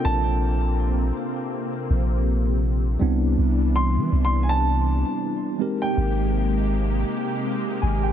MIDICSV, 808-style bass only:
0, 0, Header, 1, 2, 480
1, 0, Start_track
1, 0, Tempo, 740741
1, 30, Time_signature, 4, 2, 24, 8
1, 5265, End_track
2, 0, Start_track
2, 0, Title_t, "808-style bass"
2, 0, Program_c, 0, 38
2, 32, Note_on_c, 0, 34, 109
2, 725, Note_off_c, 0, 34, 0
2, 1232, Note_on_c, 0, 34, 100
2, 1925, Note_off_c, 0, 34, 0
2, 1953, Note_on_c, 0, 36, 107
2, 2182, Note_off_c, 0, 36, 0
2, 2192, Note_on_c, 0, 36, 106
2, 2572, Note_on_c, 0, 52, 94
2, 2582, Note_off_c, 0, 36, 0
2, 2666, Note_off_c, 0, 52, 0
2, 2673, Note_on_c, 0, 36, 102
2, 3266, Note_off_c, 0, 36, 0
2, 3872, Note_on_c, 0, 32, 112
2, 4565, Note_off_c, 0, 32, 0
2, 5073, Note_on_c, 0, 32, 99
2, 5265, Note_off_c, 0, 32, 0
2, 5265, End_track
0, 0, End_of_file